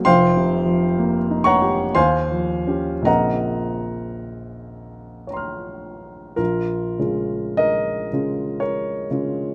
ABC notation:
X:1
M:3/4
L:1/8
Q:1/4=56
K:Bbm
V:1 name="Grand piano"
[cf=gc']3 [d_gbd'] [cfac']2 | [Begb]4 [dbc'f']2 | [FB]2 [Be]2 [Bd]2 |]
V:2 name="Grand piano" clef=bass
(3[F,,,F,,] C, F, (3B, E =G (3E,, F, [DG] | [B,,,D,B,CF]6 | B,,, [D,A,DF]2 [D,A,DF]2 [D,A,DF] |]